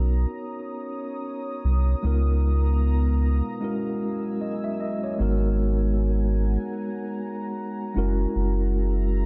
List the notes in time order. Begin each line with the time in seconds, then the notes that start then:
Already playing: B1 B3 C#4 D#4 F#4 A#4 C#5 A#5 D#6
1.64 C2
2.02 C#2 G#3 B3 D#4 F4 F5 A#5
2.07 A#4
3.60 F#3 G#3 C#4 E4 F#4 A#4 G#5 E6
3.64 A#4
4.41 D#5
4.64 E5
4.80 D#5
5.03 C#5
5.18 G#1 G#3 B3 D#4 F#4 F#5 G#5 A#5
5.22 A#4
7.94 F#1 G#3 C#4 E4 F#4 G#4 E5 A#5
7.98 A#4
8.36 F#1